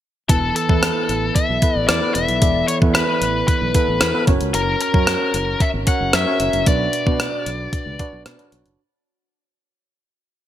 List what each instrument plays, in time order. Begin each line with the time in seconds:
0.29 fretless electric bass E1, tine electric piano E3 B3 E4 A4 B4, lead electric guitar A4, kick, closed hi-hat
0.56 lead electric guitar A4, closed hi-hat
0.69 fretless electric bass E2, tine electric piano B3 E4 A4 B4, kick
0.83 cross-stick, closed hi-hat
1.09 fretless electric bass A1, closed hi-hat
1.35 lead electric guitar E5, kick, closed hi-hat
1.49 fretless electric bass B1
1.61 tine electric piano B3 E4 A4 B4, kick, closed hi-hat
1.75 fretless electric bass A1
1.88 fretless electric bass E2, lead electric guitar D5, cross-stick, closed hi-hat
2.01 tine electric piano B3 E4 A4 B4
2.14 fretless electric bass E1, lead electric guitar E5, closed hi-hat
2.29 fretless electric bass B1, closed hi-hat
2.41 fretless electric bass E1, tine electric piano E3 B3 E4 A4 D5, kick, closed hi-hat
2.68 lead electric guitar C#5, closed hi-hat
2.81 fretless electric bass E2, tine electric piano B3 E4 A4 B4, kick
2.94 lead electric guitar B4, cross-stick, closed hi-hat
3.21 fretless electric bass A1, closed hi-hat
3.48 lead electric guitar B4, kick, closed hi-hat
3.61 fretless electric bass B1
3.74 tine electric piano B3 E4 A4 B4, kick, closed hi-hat
3.88 fretless electric bass A1
4.01 fretless electric bass E2, cross-stick, closed hi-hat
4.14 tine electric piano B3 E4 A4 B4
4.27 fretless electric bass F#1, tine electric piano C#4 F#4 A#4 C#5, kick, closed hi-hat
4.41 fretless electric bass C#2, closed hi-hat
4.54 fretless electric bass F#1, lead electric guitar A#4, closed hi-hat
4.81 lead electric guitar A#4, closed hi-hat
4.93 fretless electric bass F#2, tine electric piano C#4 F#4 A#4 C#5, kick
5.07 cross-stick, closed hi-hat
5.34 fretless electric bass F#1, closed hi-hat
5.60 lead electric guitar E5, kick, closed hi-hat
5.73 fretless electric bass G#1
5.86 tine electric piano C#4 F#4 A#4 C#5, lead electric guitar F#5, kick, closed hi-hat
6.00 fretless electric bass F#1
6.13 fretless electric bass F#2, lead electric guitar E5, cross-stick, closed hi-hat
6.26 tine electric piano C#4 F#4 A#4 C#5
6.40 fretless electric bass F#1, closed hi-hat
6.53 fretless electric bass F#1, closed hi-hat
6.66 fretless electric bass B1, tine electric piano B2 D4 F#4 B4 D5, lead electric guitar D5, kick, closed hi-hat
6.93 closed hi-hat
7.06 fretless electric bass B2, tine electric piano D4 F#4 B4 D5, kick
7.20 cross-stick, closed hi-hat
7.46 fretless electric bass B1, closed hi-hat
7.73 kick, closed hi-hat
7.86 fretless electric bass C#2
7.99 tine electric piano D4 F#4 B4 D5, kick, closed hi-hat
8.13 fretless electric bass B1
8.26 fretless electric bass B2, cross-stick, closed hi-hat
8.38 tine electric piano D4 F#4 B4 C#5, closed hi-hat
8.52 fretless electric bass B1, closed hi-hat
8.66 fretless electric bass F#1, closed hi-hat